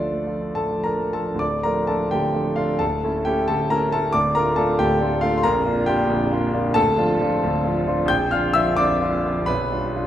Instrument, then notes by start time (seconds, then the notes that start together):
grand piano
Already playing: D2 F3 D4 F4 A4 D5
0.12 A3
0.27 F3
0.41 D4
0.55 A2 A4 A5
0.71 F3
0.84 D4 A#4 A#5
0.98 A3
1.13 F3 A4 A5
1.27 D4
1.34 D1 D2
1.39 D5 D6
1.63 F3 A3 D4 A#4 A#5
1.87 F3 A3 D4 A4 A5
2.11 D1 D2 G4 G5
2.34 F3 A3 D4
2.56 F3 A3 D4 F4 F5
2.79 D1 D2 A4 A5
3.04 A3 C#4 E4
3.25 A3 C#4 E4 G4 G5
3.48 D1 D2 A4 A5
3.70 A3 C#4 E4 A#4 A#5
3.92 A3 C#4 E4 A4 A5
4.13 D1 D2 D5 D6
4.35 A3 D4 F4 A#4 A#5
4.56 A3 D4 F4 A4 A5
4.79 D1 D2 G4 G5
5.01 A3 D4 F4
5.21 A3 D4 F4 F5
5.38 C6
5.43 A#0 A#1 A#4 A#5
5.66 A#3 D4 F4
5.86 A#3 D4 F4 G4 G5
6.09 A#0 A#1
6.31 A#3 D4 F4
6.53 A#3 D4 F4
6.74 D1 D2 A4 A5
6.97 F3 D4 F4
7.21 F3 D4 F4
7.43 D1 D2
7.64 F3 D4 F4
7.87 F3 D4 F4
8.06 A#0 A#1 G6
8.10 G5
8.31 F3 D4 F4 F5 F6
8.54 F3 D4 F4 E5 E6
8.77 A#0 A#1 D5 D6
9.01 F3 D4 F4
9.25 F3 D4 F4
9.41 B0
9.46 B1 B4 B5
9.71 G3 D4 F4
9.96 G3 D4 F4